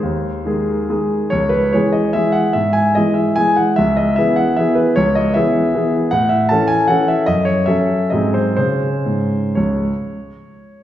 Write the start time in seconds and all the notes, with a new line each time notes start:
Already playing: C5
0.03 D#2
0.46 D#3 G#3 G#4
0.89 D#3 G#3 G#4
1.30 C#2 C#5
1.49 B4
1.73 E3 G#3 G#4 C#5
1.92 D#5
2.13 E3 G#3 G#4 E5
2.32 F#5
2.53 G#2 E5
2.73 G#5
2.95 E3 G#3 G#4 D#5
3.14 E5
3.36 E3 G#3 G#4 G#5
3.56 F#5
3.76 C#2 E5
3.97 D#5
4.16 E3 B3 G#4 E5
4.36 F#5
4.57 E3 B3 G#4 E5
4.75 B4
4.96 C#2 C#5
5.15 D#5
5.34 E3 B3 G#4 E5
5.75 E3 B3 G#4
6.11 A2 F#5
6.29 E5
6.49 E3 C#4 A4 A5
6.68 G#5
6.88 E3 C#4 A4 F#5
7.08 E5
7.26 F#2 D#5
7.45 C#5
7.66 F#3 C#4 A4 E5
8.10 G#2 F#3 C4 G#4 D#5
8.34 C5
8.56 C#3 C#4 G#4 C5
9.06 G#2
9.55 C#2 C#5